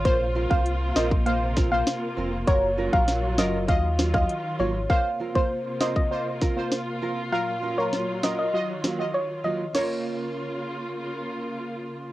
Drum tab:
CC |----------------|----------------|----------------|----------------|
HH |x---x---x---x---|x---x---x---x---|----------------|----------------|
SD |------o---o-o---|----o-o---or----|------o---o-o---|----o-o---o-----|
BD |o--o---o--o-----|o--o----o--o----|o--o---o--o-----|----------------|

CC |x---------------|
HH |----------------|
SD |o---------------|
BD |----------------|